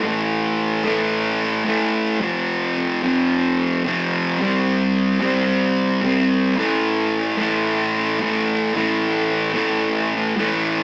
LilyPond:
\new Staff \with { instrumentName = "Distorted electric guitar" } { \clef bass \time 4/4 \key a \minor \tempo 4 = 110 <a, e a>4. <a, e a>4. <a, e a>4 | <f, c f>4. <f, c f>4. <f, c f>4 | <c g c'>4. <c g c'>4. <c g c'>4 | <a, e a>4. <a, e a>4. <a, e a>4 |
<a, e a>4. <a, e a>4. <a, e a>4 | }